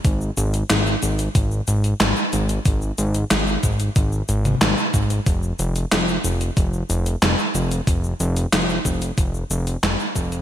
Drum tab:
HH |x-xxx-xxx-xxx-xx|x-xxx-xxx-xxx-xx|x-xxx-xxx-xxx-xx|x-xxx-xxx-xxx-xx|
SH |xxxxxxxxxxxxxxxx|xxxxxxxxxxxxxxxx|xxxxxxxxxxxxxxxx|xxxxxxxxxxxxxxxx|
CP |----x-------x---|----x-------x---|----x-------x---|----x-------x---|
SD |----o-------o---|----o-------o---|----o-------o---|----o-------o---|
T2 |----------------|-----------o----|----------------|----------------|
BD |o-------o-------|o-----o-o-----o-|o-------o-------|o-----o-o-----o-|